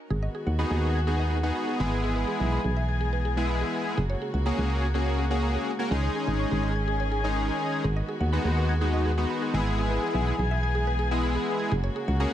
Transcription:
0.10 fm bass G#1, string section D#3 G#3 B3 F#4, synth arpeggio sound G#4
0.23 synth arpeggio sound D#5
0.35 synth arpeggio sound G#4
0.47 fm bass D#2, synth arpeggio sound F#5
0.59 analog polysynth B3 D#4 F#4 G#4, synth arpeggio sound B5
0.71 fm bass D#2, synth arpeggio sound G#4
0.83 synth arpeggio sound F#5
0.95 synth arpeggio sound G#6
1.07 analog polysynth B3 D#4 F#4 G#4, synth arpeggio sound G#4
1.19 synth arpeggio sound D#5
1.31 synth arpeggio sound G#4
1.43 analog polysynth B3 D#4 F#4 G#4, synth arpeggio sound F#5
1.55 synth arpeggio sound B5
1.68 synth arpeggio sound G#4
1.80 fm bass G#1, string section E3 G#4, analog polysynth G#3 B3 E4 G#4
1.92 synth arpeggio sound G#6
2.04 synth arpeggio sound G#4
2.16 synth arpeggio sound B4
2.28 synth arpeggio sound G#4
2.40 fm bass B1, synth arpeggio sound E5
2.52 synth arpeggio sound B5
2.64 fm bass B1, synth arpeggio sound G#4
2.77 synth arpeggio sound E5
2.89 synth arpeggio sound G#6
3.01 synth arpeggio sound G#4
3.13 synth arpeggio sound B4
3.25 synth arpeggio sound G#4
3.37 analog polysynth G#3 B3 E4 G#4, synth arpeggio sound E5
3.49 synth arpeggio sound B5
3.61 synth arpeggio sound G#4
3.85 synth arpeggio sound G#6
3.98 fm bass F#1, string section C#3 G#3 A#3 F#4, synth arpeggio sound G#4
4.10 synth arpeggio sound C#5
4.22 synth arpeggio sound G#4
4.34 fm bass C#2, synth arpeggio sound F#5
4.46 analog polysynth A#3 C#4 F#4 G#4, synth arpeggio sound A#5
4.58 fm bass C#2, synth arpeggio sound G#4
4.70 synth arpeggio sound F#5
4.82 synth arpeggio sound G#6
4.94 analog polysynth A#3 C#4 F#4 G#4, synth arpeggio sound G#4
5.06 synth arpeggio sound C#5
5.18 synth arpeggio sound G#4
5.30 analog polysynth A#3 C#4 F#4 G#4, synth arpeggio sound F#5
5.43 synth arpeggio sound A#5
5.55 synth arpeggio sound G#4
5.79 analog polysynth A#3 C#4 F#4 A#4, synth arpeggio sound G#6
5.91 fm bass C#2, string section D#3 C#4 G#4, analog polysynth G#3 C#4 D#4 G#4, synth arpeggio sound G#4
6.03 synth arpeggio sound C#5
6.15 synth arpeggio sound G#4
6.27 fm bass G#1, synth arpeggio sound D#5
6.39 synth arpeggio sound C#6
6.51 fm bass G#1, synth arpeggio sound G#4
6.63 synth arpeggio sound D#5
6.76 synth arpeggio sound G#6
6.88 synth arpeggio sound G#4
7.00 synth arpeggio sound C#5
7.12 synth arpeggio sound G#4
7.24 analog polysynth G#3 C#4 D#4 G#4, synth arpeggio sound D#5
7.36 synth arpeggio sound C#6
7.48 synth arpeggio sound G#4
7.72 synth arpeggio sound G#6
7.84 fm bass G#1, string section G#3 B3 F#4, synth arpeggio sound G#4
7.96 synth arpeggio sound D#5
8.09 synth arpeggio sound G#4
8.20 fm bass D#2, synth arpeggio sound F#5
8.33 analog polysynth G#3 B3 D#4 F#4, synth arpeggio sound B5
8.45 fm bass D#2, synth arpeggio sound G#4
8.57 synth arpeggio sound F#5
8.69 synth arpeggio sound G#6
8.81 analog polysynth G#3 B3 D#4 F#4, synth arpeggio sound G#4
8.93 synth arpeggio sound D#5
9.05 synth arpeggio sound G#4
9.18 analog polysynth G#3 B3 D#4 F#4, synth arpeggio sound F#5
9.30 synth arpeggio sound B5
9.42 synth arpeggio sound G#4
9.54 fm bass G#1, string section E3 G#4, analog polysynth G#3 B3 E4 G#4
9.66 synth arpeggio sound G#6
9.78 synth arpeggio sound G#4
9.91 synth arpeggio sound B4
10.03 synth arpeggio sound G#4
10.14 fm bass B1, synth arpeggio sound E5
10.27 synth arpeggio sound B5
10.39 fm bass B1, synth arpeggio sound G#4
10.51 synth arpeggio sound E5
10.63 synth arpeggio sound G#6
10.75 synth arpeggio sound G#4
10.87 synth arpeggio sound B4
10.99 synth arpeggio sound G#4
11.11 analog polysynth G#3 B3 E4 G#4, synth arpeggio sound E5
11.23 synth arpeggio sound B5
11.35 synth arpeggio sound G#4
11.59 synth arpeggio sound G#6
11.72 fm bass F#1, string section C#3 G#3 A#3 F#4, synth arpeggio sound G#4
11.84 synth arpeggio sound C#5
11.96 synth arpeggio sound G#4
12.08 fm bass C#2, synth arpeggio sound F#5
12.20 analog polysynth A#3 C#4 F#4 G#4, synth arpeggio sound A#5

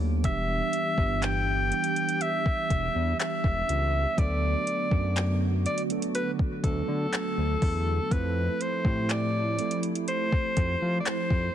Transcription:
Already playing: analog synth bass D#2, analog synth pad D3 B3 F#4, tine electric piano F#3 A3 B3 D4 E4 A4
0.23 analog synth bass E1, tine electric piano E3 G3 B3 D4 G4, analog synth pad E3 D4 G4, alto saxophone E5, kick, closed hi-hat
0.73 closed hi-hat
0.96 analog synth bass G1, tine electric piano E3 G3 B3 D4 G4, kick
1.22 alto saxophone G5, clap, closed hi-hat
1.70 tine electric piano E3 G3 B3 D4 G4, closed hi-hat
1.84 closed hi-hat
1.96 closed hi-hat
2.09 closed hi-hat
2.21 alto saxophone E5, closed hi-hat
2.46 kick
2.70 analog synth bass E1, kick, closed hi-hat
2.95 analog synth bass E2
3.20 alto saxophone E5, clap, closed hi-hat
3.44 analog synth bass E1, kick
3.69 analog synth bass C#2, closed hi-hat
4.16 analog synth bass D2, analog synth pad D3 B3 F#4, tine electric piano F#3 A3 B3 D4 A4, alto saxophone D5, kick, closed hi-hat
4.67 closed hi-hat
4.90 analog synth bass F#2, tine electric piano F#3 A3 B3 D4 F#4, kick
5.16 clap, closed hi-hat
5.66 alto saxophone D5, closed hi-hat
5.78 closed hi-hat
5.89 tine electric piano F#3 A3 B3 D4 A4, closed hi-hat
6.02 closed hi-hat
6.15 alto saxophone B4, closed hi-hat
6.39 kick
6.62 analog synth bass D2, tine electric piano F#3 A3 B3 D4 A4, alto saxophone A4, kick, closed hi-hat
6.88 analog synth bass D3
7.13 clap, closed hi-hat
7.38 analog synth bass D2
7.62 analog synth bass E2, kick, open hi-hat
8.10 analog synth bass F2, tine electric piano F3 A3 C4 E4 A4, analog synth pad F3 A3 E4, alto saxophone B4, kick, closed hi-hat
8.61 alto saxophone C5, closed hi-hat
8.84 analog synth bass A2, tine electric piano F3 A3 C4 E4 G4, kick
9.09 alto saxophone D5, clap, closed hi-hat
9.58 tine electric piano F3 A3 C4 E4 A4, closed hi-hat
9.71 closed hi-hat
9.83 closed hi-hat
9.95 closed hi-hat
10.08 alto saxophone C5, closed hi-hat
10.32 kick
10.57 analog synth bass F2, kick, closed hi-hat
10.82 analog synth bass F3
11.00 alto saxophone D5
11.06 alto saxophone C5, clap, closed hi-hat
11.30 analog synth bass F2, kick

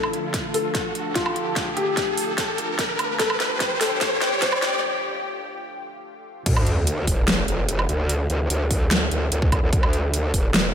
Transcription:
Already playing: analog synth pad D3 F3 A3 F4 A4, felt piano A4, riser
0.03 low woodblock
0.13 closed hi-hat
0.34 kick, snare, closed hi-hat
0.54 felt piano A4, open hi-hat
0.75 kick, snare, closed hi-hat
0.95 closed hi-hat
1.15 felt piano F4, kick, snare, closed hi-hat
1.26 low woodblock
1.36 closed hi-hat
1.56 kick, snare, closed hi-hat
1.77 felt piano G4, closed hi-hat
1.97 kick, snare, closed hi-hat
2.17 open hi-hat
2.38 kick, snare, closed hi-hat
2.58 closed hi-hat
2.79 kick, snare, closed hi-hat
2.99 closed hi-hat, low woodblock
3.19 analog synth pad G4, felt piano A4, kick, snare, closed hi-hat
3.30 low woodblock
3.40 snare, closed hi-hat
3.60 kick, snare, closed hi-hat
3.81 felt piano A4, snare, open hi-hat
4.01 kick, snare, closed hi-hat
4.22 snare, closed hi-hat
4.42 felt piano C5, kick, snare, closed hi-hat
4.52 low woodblock
4.62 snare, closed hi-hat
6.46 wobble bass D2, kick, closed hi-hat, crash, sub drop
6.56 low woodblock
6.67 closed hi-hat
6.87 closed hi-hat
7.07 wobble bass E1, kick, open hi-hat
7.28 snare, closed hi-hat
7.48 wobble bass F1, closed hi-hat
7.69 closed hi-hat
7.79 low woodblock
7.89 wobble bass D2, closed hi-hat
8.09 closed hi-hat
8.30 wobble bass D2, closed hi-hat
8.50 wobble bass D2, closed hi-hat
8.71 kick, open hi-hat
8.91 snare, closed hi-hat
9.11 wobble bass D2, closed hi-hat
9.32 wobble bass D2, closed hi-hat
9.42 kick
9.52 wobble bass D2, kick, closed hi-hat, low woodblock
9.63 wobble bass D2
9.73 wobble bass D2, kick, closed hi-hat
9.83 low woodblock
9.93 closed hi-hat
10.14 closed hi-hat
10.34 wobble bass E1, kick, open hi-hat
10.54 snare, closed hi-hat

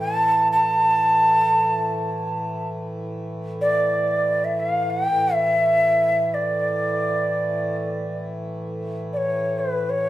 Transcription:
Already playing: harmonium A2 E3
0.00 bansuri A5
0.52 bansuri A5
3.61 bansuri D5
4.44 bansuri E5
4.60 bansuri F5
4.90 bansuri F#5
5.05 harmonium A2 E3, bansuri G5
5.34 bansuri E5
6.34 bansuri D5
9.13 bansuri C#5 D5
9.59 bansuri B4
9.90 bansuri C#5

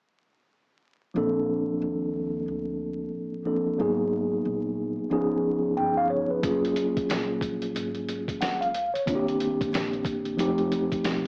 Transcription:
1.14 upright bass A#1, tine electric piano F3 A#3 C4 D4 A4
1.82 upright bass D#2
2.48 upright bass D2
3.13 upright bass A1
3.45 tine electric piano F3 A#3 C4 D4 A4
3.67 muted upright bass stroke
3.78 upright bass G#1, tine electric piano F#3 A#3 B3 D#4 G#4
4.45 upright bass A#1
4.99 muted upright bass stroke
5.10 upright bass C#2, tine electric piano F3 B3 C#4 D#4 G#4
5.77 upright bass G1, tine electric piano G5
5.97 tine electric piano F5
6.10 tine electric piano C#5
6.30 tine electric piano B4, muted upright bass stroke
6.42 upright bass F#1, tine electric piano F#3 A#3 C#4 F4 G#4, kick, closed hi-hat
6.65 closed hi-hat
6.76 closed hi-hat
6.97 kick, closed hi-hat
7.09 upright bass A#1, snare, closed hi-hat
7.41 kick, closed hi-hat
7.62 closed hi-hat
7.75 upright bass G#1, closed hi-hat
7.95 closed hi-hat
8.09 closed hi-hat
8.28 kick, closed hi-hat
8.41 upright bass C#2, tine electric piano F#5, snare, closed hi-hat
8.61 tine electric piano F5, closed hi-hat
8.75 closed hi-hat
8.94 tine electric piano C#5, muted upright bass stroke, closed hi-hat
9.06 upright bass C2, tine electric piano D#3 A#3 C4 D4 F4, kick, closed hi-hat
9.15 tine electric piano G4
9.28 closed hi-hat
9.40 closed hi-hat
9.61 kick, closed hi-hat
9.73 upright bass A#1, snare, closed hi-hat
9.93 closed hi-hat
10.05 kick, closed hi-hat
10.25 closed hi-hat
10.37 upright bass F1, tine electric piano F3 A3 C4 D#4 G4, closed hi-hat
10.58 closed hi-hat
10.72 closed hi-hat
10.92 kick, closed hi-hat
11.04 upright bass B1, snare, closed hi-hat

